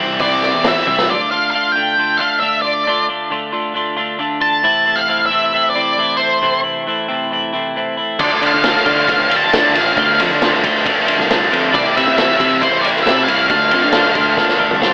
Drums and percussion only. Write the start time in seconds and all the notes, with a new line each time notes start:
0.19 kick, open hi-hat
0.43 snare
0.64 snare, open hi-hat
0.87 kick
0.98 snare
8.19 kick, crash
8.43 ride
8.64 snare, ride
8.76 snare
8.86 kick, ride
9.09 kick, ride
9.31 ride
9.53 snare, ride
9.75 ride
9.97 kick, ride
10.20 ride
10.42 snare, ride
10.54 snare
10.64 kick, ride
10.86 kick, ride
11.08 ride
11.20 snare
11.30 snare, ride
11.53 ride
11.74 kick, ride
11.97 ride
12.18 snare, ride
12.30 snare
12.40 kick, ride
12.62 kick, ride
12.84 ride
12.96 snare
13.07 snare, ride
13.28 ride
13.50 kick, ride
13.71 ride
13.92 snare, ride
14.04 snare
14.15 kick, ride
14.37 kick, snare
14.49 snare
14.60 mid tom
14.71 mid tom
14.82 snare